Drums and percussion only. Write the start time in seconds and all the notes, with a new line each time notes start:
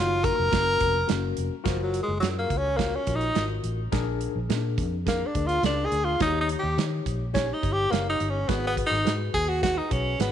0.24 kick, closed hi-hat
0.53 kick, snare, closed hi-hat
0.80 kick, closed hi-hat
1.09 snare, closed hi-hat
1.37 closed hi-hat
1.65 kick, snare, closed hi-hat
1.94 closed hi-hat
2.22 snare, closed hi-hat
2.50 kick, closed hi-hat
2.79 kick, snare, closed hi-hat
3.07 kick, closed hi-hat
3.21 closed hi-hat
3.35 snare, closed hi-hat
3.64 closed hi-hat
3.92 kick, snare, closed hi-hat
4.21 closed hi-hat
4.50 snare, closed hi-hat
4.78 kick, closed hi-hat
5.07 kick, snare, closed hi-hat
5.35 kick, closed hi-hat
5.49 closed hi-hat
5.63 snare, closed hi-hat
5.92 closed hi-hat
6.20 kick, snare, closed hi-hat
6.49 closed hi-hat
6.78 snare, closed hi-hat
7.06 kick, closed hi-hat
7.35 kick, snare, closed hi-hat
7.63 kick, closed hi-hat
7.93 snare, closed hi-hat
8.20 closed hi-hat
8.49 kick, snare, closed hi-hat
8.77 kick, closed hi-hat
8.93 snare
9.07 snare, closed hi-hat
9.34 kick, closed hi-hat
9.63 kick, snare, closed hi-hat
9.91 kick, closed hi-hat
10.20 snare, closed hi-hat